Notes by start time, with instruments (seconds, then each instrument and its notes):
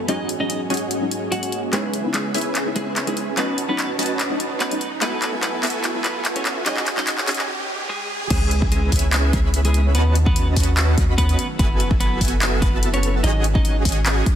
Already playing: riser
0.07 analog synth pad G#2 F#3 C#4, synth pluck F#3 G#3 C#4 D#4, supersaw synth C#4 F#4 G#4 D#5 G#5, clean electric guitar D#4 D#5, closed hi-hat
0.29 closed hi-hat
0.39 synth pluck F#3 G#3 C#4 D#4, clean electric guitar D#4 D#5
0.50 closed hi-hat
0.69 synth pluck F#3 G#3 C#4 D#4, supersaw synth C#4 F#4 G#4 D#5 G#5, closed hi-hat
0.74 closed hi-hat
0.77 closed hi-hat
0.91 closed hi-hat
1.01 synth pluck F#3 G#3 C#4 D#4
1.11 closed hi-hat
1.31 synth pluck F#3 G#3 C#4 F#4, clean electric guitar F#4 F#5, closed hi-hat
1.43 closed hi-hat
1.52 closed hi-hat
1.72 analog synth pad C#3 B3 E4, synth pluck G#3 B3 D#4 E4, clean electric guitar G#3 G#4, supersaw synth C#4 G#4 B4 E5 G#5, clap, closed hi-hat
1.94 closed hi-hat
2.03 synth pluck G#3 B3 D#4 E4
2.14 clean electric guitar G#3 G#4, clap, closed hi-hat
2.34 synth pluck G#3 B3 D#4 E4, supersaw synth C#4 G#4 B4 E5 G#5, open hi-hat
2.38 closed hi-hat
2.41 closed hi-hat
2.55 clap, closed hi-hat
2.65 synth pluck G#3 B3 D#4 E4
2.76 clean electric guitar G#3 G#4, closed hi-hat
2.96 clap, closed hi-hat
3.06 synth pluck G#3 B3 D#4 E4, clean electric guitar G#3 G#4, closed hi-hat
3.17 closed hi-hat
3.36 analog synth pad D#2 A2 C#4 F#4, synth pluck F#3 A3 C#4 D#4, clean electric guitar B3 B4, supersaw synth C#4 F#4 B4 D#5 A5, clap, closed hi-hat
3.58 closed hi-hat
3.68 synth pluck F#3 A3 C#4 D#4, clean electric guitar B3 B4
3.79 clap, closed hi-hat
3.98 synth pluck F#3 A3 C#4 D#4, supersaw synth C#4 F#4 B4 D#5 A5, open hi-hat
4.03 closed hi-hat
4.06 closed hi-hat
4.20 clap, closed hi-hat
4.29 synth pluck F#3 A3 C#4 D#4
4.40 closed hi-hat
4.60 clean electric guitar B3 B4, clap, closed hi-hat
4.70 synth pluck F#3 A3 C#4 D#4, closed hi-hat
4.81 analog synth pad F#2 F#3 A3 B3 E4 G#5, closed hi-hat
5.01 synth pluck G#3 A3 B3 E4, supersaw synth B3 F#4 A4 E5 G#5, clean electric guitar B3 B4, clap, closed hi-hat
5.22 clap, closed hi-hat
5.32 synth pluck G#3 A3 B3 E4
5.42 clean electric guitar B3 B4, clap, closed hi-hat
5.62 synth pluck G#3 A3 B3 E4, supersaw synth B3 F#4 A4 E5 G#5, clap, open hi-hat
5.67 closed hi-hat
5.70 closed hi-hat
5.84 clap, closed hi-hat
5.94 synth pluck G#3 A3 B3 E4
6.04 clean electric guitar B3 B4, clap, closed hi-hat
6.25 clap, closed hi-hat
6.35 synth pluck G#3 A3 B3 E4, clean electric guitar C#4 C#5, closed hi-hat
6.45 clap, closed hi-hat
6.65 analog synth pad G#2 C#4, synth pluck F#3 G#3 C#4 D#4, supersaw synth C#4 F#4 G#4 D#5 G#5, clean electric guitar D#4 D#5, clap, closed hi-hat
6.77 clap
6.87 clap, closed hi-hat
6.96 synth pluck F#3 G#3 C#4 D#4, clean electric guitar D#4 D#5, clap
7.07 clap, closed hi-hat
7.18 clap
7.27 synth pluck F#3 G#3 C#4 D#4, supersaw synth C#4 F#4 G#4 D#5 G#5, clap, open hi-hat
7.31 closed hi-hat
7.34 closed hi-hat
7.39 clap
7.89 clean electric guitar G#3 G#4
8.30 808-style bass C#2, analog synth pad C#3 B3 E4, clean electric guitar G#3 G#4, supersaw synth C#4 G#4 B4 E5 G#5, kick, closed hi-hat, crash
8.51 closed hi-hat
8.62 kick
8.72 clean electric guitar G#3 G#4, closed hi-hat
8.92 808-style bass C#2, supersaw synth C#4 G#4 B4 E5 G#5, kick, closed hi-hat, open hi-hat
8.99 closed hi-hat
9.13 clap, closed hi-hat
9.33 808-style bass C#2, clean electric guitar G#3 G#4, supersaw synth C#4 G#4 B4 E5 B5, kick, closed hi-hat
9.54 closed hi-hat
9.65 clean electric guitar G#3 G#4, closed hi-hat
9.74 closed hi-hat
9.95 808-style bass D#2, analog synth pad D#3 A3 C#4 F#4, clean electric guitar B3 B4, supersaw synth C#4 F#4 B4 D#5 A5, closed hi-hat
10.15 closed hi-hat
10.26 clean electric guitar B3 B4, kick
10.36 closed hi-hat
10.56 808-style bass D#2, supersaw synth C#4 F#4 B4 D#5 A5, kick, closed hi-hat, open hi-hat
10.63 closed hi-hat
10.77 clap, closed hi-hat
10.98 808-style bass D#2, supersaw synth C#4 F#4 B4 D#5 B5, kick, closed hi-hat
11.18 clean electric guitar B3 B4, kick, closed hi-hat
11.29 closed hi-hat
11.39 analog synth pad F#3 E4 A4 B4, closed hi-hat
11.59 808-style bass F#1, supersaw synth B3 F#4 A4 E5 G#5, clean electric guitar B3 B4, kick, closed hi-hat
11.80 closed hi-hat
11.91 kick
12.00 clean electric guitar B3 B4, closed hi-hat
12.21 808-style bass F#1, supersaw synth B3 F#4 A4 E5 G#5, kick, closed hi-hat, open hi-hat
12.28 closed hi-hat
12.42 clap, closed hi-hat
12.62 808-style bass F#1, clean electric guitar B3 B4, supersaw synth B3 F#4 A4 E5 A5, kick, closed hi-hat
12.83 closed hi-hat
12.93 clean electric guitar C#4 C#5, closed hi-hat
13.03 closed hi-hat
13.23 808-style bass G#1, analog synth pad G#3 C#4 F#4, supersaw synth C#4 F#4 G#4 D#5 G#5, clean electric guitar D#4 D#5, closed hi-hat
13.44 closed hi-hat
13.55 clean electric guitar D#4 D#5, kick
13.65 closed hi-hat
13.85 808-style bass G#1, supersaw synth C#4 F#4 G#4 D#5 G#5, kick, closed hi-hat, open hi-hat
13.92 closed hi-hat
14.06 clap, closed hi-hat
14.26 kick, closed hi-hat